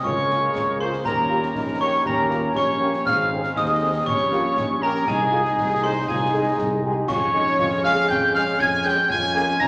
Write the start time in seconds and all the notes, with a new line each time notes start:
Already playing: G#3
0.03 C#2 A#3 F4 G#4 A#4 C#5 C#6, concert bass drum
0.30 A#3 F4 G#4, snare
0.52 C#2 G#4, concert bass drum, snare
0.80 A#3 F4 G#4 C5 C6
0.92 snare
1.04 D#2 G3 C#4 G4 A#4 C#5 A#5, concert bass drum, snare
1.28 A#3 C#4 F4 G4
1.42 snare
1.54 A#1 D#4, concert bass drum, snare
1.80 A#3 C#4 G4 C#5 C#6
2.03 D#2 G4 A#4 C#5 A#5, concert bass drum
2.29 A#3 C#4 F4 G4, snare
2.54 A#1 D#4 G4 C#5 C#6, concert bass drum, snare
2.80 A#3 C#4 G4
2.93 snare
3.04 G#1 G#3 C4 G#4 C5 F5 F6, concert bass drum, snare, crash
3.30 C4 C#4 G#4
3.43 snare
3.56 D#2 D#4 G#4 C5 D#5 D#6, concert bass drum, snare
3.82 C4 G#4
4.05 A#1 G3 C#4 G4 C#5 C#6, concert bass drum
4.32 A#3 C#4 F4 G4, snare
4.56 A#1 D#4, concert bass drum, snare
4.82 A#3 C#4 G4 A#4 A#5
4.95 snare
5.07 C2 G#3 D#4 G#4 D#5 G#5, concert bass drum, snare
5.31 G#3 D#4 F4 G#4
5.45 snare
5.56 C2 D#4, concert bass drum, snare
5.84 G#3 D#4 G#4 C5 C6
6.07 C2 F4 G#4 D#5 G#5, concert bass drum, snare
6.32 G#3 D#4 G#4
6.57 C2 G#4, concert bass drum, snare
6.82 G#3 D#4 G4 G#4
7.08 F2 G#3 C#4 F4 G#4 C#5 C#6, concert bass drum, snare, crash
7.33 G#3 C#4 D#4 G#4
7.46 snare
7.59 F2 F4, concert bass drum, snare
7.83 G#3 C#4 G#4 F5 F6
8.09 F2 G5 G6, concert bass drum
8.34 G#3 C#4 G#4 F5 F6, snare
8.59 F2 C#4 G#4 C#5 G#5 G#6, concert bass drum, snare
8.85 G#3 C#4 G#4 G5 G6
8.98 snare
9.10 F2 G#3 C#4 F4 G#4 C#5 G#5 G#6, concert bass drum, snare
9.34 A#3 C#4 G#4 G#5 G#6
9.48 snare
9.59 F2 D#4 G#4 C#5 A#5 A#6, concert bass drum, snare